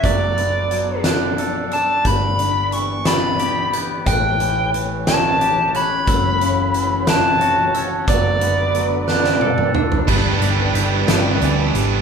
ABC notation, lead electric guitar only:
X:1
M:6/8
L:1/8
Q:3/8=60
K:Glyd
V:1 name="Lead electric guitar"
d3 z2 a | b2 c' b3 | g2 z a2 b- | b3 a3 |
d4- d z | z6 |]